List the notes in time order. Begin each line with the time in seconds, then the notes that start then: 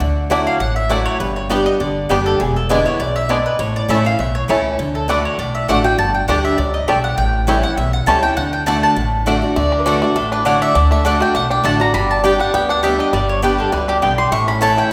0.00 D2 D3
0.30 F#3 A3 D4 E4 F#4 D5 F#5
0.47 F5
0.60 A1 A2 F#5
0.76 E5
0.89 F#3 A3 D4 E4 F#4 D5 F#5
1.06 C#5
1.20 G1 G2 B4
1.36 C#5
1.49 G3 B3 D4 G4 D5 G5
1.66 D#5
1.80 G1 D3 D5
2.09 F#1 G3 B3 D4 G4 D5 G5
2.26 A4
2.40 E1 E2 G#4
2.56 A4
2.69 D3 G#3 B3 D4 E4 B4 D5 G#5
2.85 B3 E4 C#5
2.99 B1 F#2 D5
3.16 E5
3.29 G#2 G#3 B3 D4 E4 D5 G#5
3.46 B4
3.59 A1 A2 C#5
3.76 D5
3.88 A1 E3 A3 C#4 E4 C#5 E5 A5
4.05 C#4 E4 F5
4.19 B1 E2 E5
4.35 C#5
4.48 C#2 E3 A3 C#4 E4 C#5 A5
4.79 D2 D3
4.95 A4
5.08 D3 A3 D4 F#4 B4 D5 F#5
5.25 C#5
5.39 B1 A2 D5
5.55 E5
5.68 A1 D3 A3 D4 F#4 D5 F#5
5.84 D4 F#4 G5
5.98 G1 G2 A5
6.14 G5
6.28 D2 D3 G3 A3 D4 G4 D5 F#5 A5
6.45 E5
6.58 C#2 F#2 D5
6.74 D#5
6.88 B1 G2 G3 A3 D4 G4 D5 E5 A5
7.04 F#5
7.18 A1 A2 G5
7.47 E3 G3 A3 C#4 E4 C#5 G5
7.63 C#4 E4 F#5
7.77 B1 E2 E5
7.93 F#5
8.06 C#2 E3 G3 A3 C#4 E4 C#5 G5 A5
8.23 C#4 E4 G5
8.37 D2 D3 F#5
8.53 G5
8.66 D3 A3 D4 F#4 D5 F#5 A5
8.83 A5
8.96 A1 A2
9.26 D3 A3 D4 F#4 D5 F#5
9.42 D4 F#4
9.56 D2 D3 A3 D5
9.72 D4
9.78 A#4 B4
9.86 D3 A3 D4 F#4 A4 D5 F#5
10.02 A3 D4 F#4
10.16 A1 A2 D4 A4
10.32 D4 B4
10.45 D3 A3 D4 F#4 C#5 D5 F#5
10.62 D4 E5
10.75 D2 D3 D4 D5
10.91 A3 E5
11.04 D3 A3 D4 F#4 D5 F#5
11.20 A3 D4 F#4 G5
11.35 B1 A2 D4 F#5
11.50 D4 G5
11.64 A1 D3 A3 D4 F#4 D5 F#5 A5
11.80 D4 F#4 A#5
11.94 G1 G2 G3 B5
12.11 A5
12.24 G3 B3 D4 G4 D5 G5
12.39 G3 D4 G4 F#5
12.53 D2 D3 B3 G5
12.69 D4 F#5
12.83 G3 B3 D4 G4 D5 E5 G5
12.99 D4 D#5
13.13 G1 G2 G3 D5
13.29 C#5
13.42 G3 B3 D4 G4 B4 D5 G5
13.59 D3 A4
13.72 C#2 F#2 G3 B4
13.88 D4 G4
14.02 B1 G2 D3 B3 G4 D5 G5
14.18 G3 C6
14.32 A1 A2 A3 C#6
14.48 C#4 B5
14.61 E3 A3 C#4 E4 C#5 A5
14.77 E3 G5